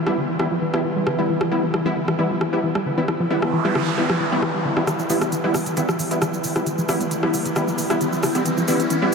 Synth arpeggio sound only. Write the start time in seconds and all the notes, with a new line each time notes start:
0.07 G3
0.17 D3
0.29 E3
0.40 E3
0.51 F3
0.62 E3
0.74 B3
0.84 E3
0.96 G3
1.07 D3
1.19 E3
1.29 E3
1.41 F3
1.52 E3
1.63 B3
1.74 E3
1.86 G3
1.96 D3
2.08 E3
2.19 E3
2.31 F3
2.41 E3
2.53 B3
2.63 E3
2.75 G3
2.86 D3
2.98 E3
3.08 E3
3.20 F3
3.31 E3
3.42 B3
3.53 E3
3.65 G3
3.75 D3
3.87 E3
3.98 E3
4.10 F3
4.20 E3
4.32 B3
4.43 E3
4.54 G3
4.65 D3
4.77 E3
4.87 E3
4.99 F3
5.10 E3
5.22 B3
5.32 E3
5.44 G3
5.55 D3
5.66 E3
5.77 E3
5.89 F3
5.99 E3
6.11 B3
6.22 E3
6.33 G3
6.44 D3
6.56 E3
6.66 E3
6.78 F3
6.89 E3
7.00 B3
7.11 E3
7.23 G3
7.33 D3
7.45 E3
7.56 E3
7.68 F3
7.78 E3
7.90 B3
8.01 E3
8.13 G3
8.23 D3
8.35 E3
8.46 E3
8.58 F3
8.68 E3
8.80 B3
8.91 E3
9.02 G3